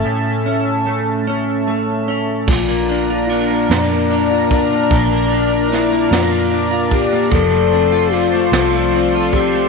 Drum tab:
CC |------|x-----|------|------|
RD |------|-xxxxx|xxxxxx|xxxxxx|
SD |------|---o--|--oo--|---o--|
BD |------|o----o|o----o|o----o|